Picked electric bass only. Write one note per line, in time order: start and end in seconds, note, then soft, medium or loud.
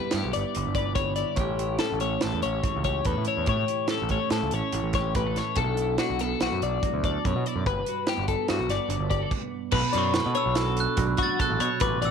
0.14 0.22 G2 medium
0.24 0.32 B1 medium
0.36 0.43 G1 medium
0.56 0.64 G1 medium
0.67 1.23 G1 medium
1.37 1.78 A1 medium
1.92 2.16 A1 medium
2.24 2.31 A1 medium
2.34 2.41 E2 medium
2.44 2.60 A1 medium
2.76 3.00 C#2 medium
3.06 3.14 E2 medium
3.17 3.25 A2 medium
3.37 3.45 E2 medium
3.48 3.64 A2 medium
4.02 4.17 A1 medium
4.31 4.39 A2 medium
4.42 4.50 C#2 medium
4.52 4.60 A1 medium
4.73 4.81 A1 medium
4.82 5.39 A1 medium
5.57 5.97 B1 medium
6.10 6.34 B1 medium
6.41 6.49 B1 medium
6.52 6.60 F#2 medium
6.62 6.78 B1 medium
6.94 7.17 D2 medium
7.25 7.33 F#2 medium
7.36 7.43 B2 medium
7.56 7.64 F#2 medium
7.66 7.82 G1 medium
8.18 8.34 G1 medium
8.50 8.58 G2 medium
8.59 8.67 B1 medium
8.69 8.77 G1 medium
8.89 8.97 G1 medium
8.99 9.24 G1 medium
9.73 9.81 B1 medium
9.95 10.19 F#2 medium
10.26 10.34 B2 medium
10.46 10.86 B1 medium
10.98 11.14 B1 medium
11.50 11.58 A1 medium
11.60 11.68 B2 medium
11.82 11.97 A1 medium
12.01 12.11 A1 medium